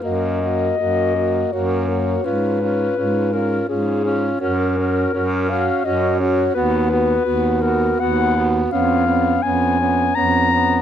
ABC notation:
X:1
M:3/4
L:1/8
Q:1/4=83
K:F#
V:1 name="Clarinet"
d4 c2 | B3 A G2 | A3 e d c | B3 A f z |
e2 g2 a2 |]
V:2 name="Alto saxophone"
F F F F F F | E E E E E E | F F F F F F | F F F F F F |
C C C C C C |]
V:3 name="Tenor saxophone"
A, A, A, A, A, A, | C C C C C C | C C C C C C | B, B, B, B, B, B, |
B, B, B, B, B, B, |]
V:4 name="Baritone saxophone" clef=bass
F,,2 F,,2 F,,2 | G,,2 G,,2 G,,2 | F,,2 F,,2 F,,2 | D,,2 D,,2 D,,2 |
E,,2 E,,2 E,,2 |]